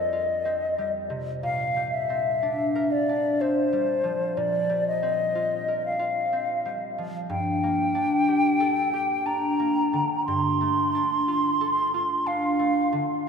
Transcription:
0.00 1.46 F2 soft
0.00 1.68 F3 soft
0.00 0.77 G3 soft
0.00 0.44 C4 soft
0.00 0.11 F4 soft
0.00 1.47 A4 soft
0.00 0.92 D#5 soft
0.13 4.03 F4 soft
0.45 2.08 C4 soft
0.78 1.75 G3 soft
1.10 1.46 C3 soft
1.43 4.36 A#2 soft
1.43 1.96 F5 medium
1.76 3.71 G3 soft
1.94 2.93 E5 medium
2.10 3.40 C4 soft
2.43 3.08 D4 soft
2.75 5.67 A#4 soft
2.92 3.43 D5 soft
3.09 4.42 D4 soft
3.41 5.01 C4 soft
3.41 4.39 C5 soft
3.73 4.68 G3 soft
4.03 6.97 F3 soft
4.37 7.34 A#2 soft
4.37 4.87 D5 medium
4.69 6.64 G3 soft
4.88 5.83 D#5 medium
5.03 6.31 C4 soft
5.35 5.98 F4 soft
5.68 9.58 A#4 soft
5.86 6.80 F5 soft
5.99 7.33 F4 soft
6.33 7.34 C4 soft
6.65 10.30 G3 soft
6.98 7.34 F3 soft
7.29 10.27 G2 soft
7.29 9.28 G5 medium
7.63 9.58 A#3 soft
7.95 9.25 D4 soft
8.28 8.92 G4 soft
8.60 11.60 A4 soft
8.93 10.31 G4 soft
9.26 10.93 D4 soft
9.26 10.25 A#5 medium
9.59 10.30 A#3 soft
9.93 10.30 D3 soft
10.26 13.29 G2 soft
10.26 12.28 C6 medium
10.61 12.58 A3 soft
10.95 12.25 D4 soft
11.28 11.93 F4 soft
11.61 13.29 A4 soft
11.94 13.29 F4 soft
12.26 13.29 D4 soft
12.26 13.00 F5 medium
12.59 13.29 A3 soft
12.93 13.29 D3 soft

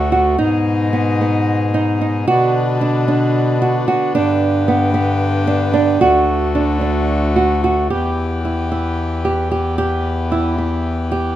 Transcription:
0.00 0.35 D2 medium
0.00 0.34 D3 medium
0.00 0.37 A3 medium
0.00 0.36 F#4 medium
0.12 0.36 F#4 medium
0.38 2.24 G#2 medium
0.38 2.26 B2 medium
0.38 2.26 G#3 medium
0.38 0.87 D#4 medium
0.38 2.26 D#4 medium
0.93 1.17 B3 medium
1.21 1.69 B3 medium
1.74 1.98 D#4 medium
2.01 2.25 D#4 medium
2.28 3.97 B2 medium
2.28 4.13 D3 medium
2.28 5.98 B3 medium
2.28 4.13 D4 medium
2.28 2.76 F#4 medium
2.81 3.05 D4 medium
3.08 3.56 D4 medium
3.62 3.85 F#4 medium
3.88 4.12 F#4 medium
4.14 5.98 G2 medium
4.14 7.88 D3 medium
4.14 4.62 D4 medium
4.14 6.00 G4 medium
4.68 4.92 B3 medium
4.94 5.42 B3 medium
5.47 5.72 D4 medium
5.74 5.98 D4 medium
6.00 7.88 D2 medium
6.00 7.89 A3 medium
6.00 7.89 F#4 medium
6.00 6.50 F#4 medium
6.55 6.80 D4 medium
6.81 7.31 D4 medium
7.36 7.61 F#4 medium
7.64 7.89 F#4 medium
7.90 11.36 E2 medium
7.90 11.36 E3 medium
7.90 11.36 B3 medium
7.90 8.40 G4 medium
7.90 11.36 G4 medium
8.45 8.69 E4 medium
8.72 9.20 E4 medium
9.25 9.49 G4 medium
9.51 9.76 G4 medium
9.78 10.26 G4 medium
10.32 10.56 E4 medium
10.58 11.06 E4 medium
11.12 11.36 G4 medium

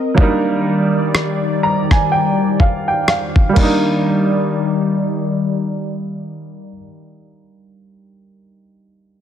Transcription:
0.00 0.12 G3 medium
0.00 0.13 A#3 medium
0.00 0.14 C4 medium
0.00 0.15 D#4 medium
0.00 0.14 A#4 medium
0.00 0.16 A#4 medium
0.00 0.14 D#5 medium
0.15 3.53 D#3 medium
0.15 0.24 F#3 medium
0.15 3.53 G3 medium
0.15 3.52 A#3 medium
0.15 3.53 D4 medium
0.15 3.53 D5 medium
0.15 kick loud
0.20 3.48 G3 medium
0.20 3.54 D#4 medium
0.20 3.55 A#4 medium
1.15 cross-stick loud
1.63 1.89 A#5 medium
1.91 2.10 G#5 medium
1.91 kick medium
1.91 cross-stick medium
2.12 2.56 G5 medium
2.60 2.86 F5 medium
2.60 kick medium
2.88 3.07 G5 medium
3.08 3.53 F5 medium
3.08 cross-stick loud
3.36 kick medium
3.49 6.67 G3 medium
3.53 6.74 D#3 medium
3.53 6.74 G3 medium
3.53 6.71 A#3 medium
3.53 6.74 D5 medium
3.53 kick medium
3.53 crash medium
3.57 6.75 D4 medium
3.57 6.79 D#4 medium
3.65 6.82 A#4 medium

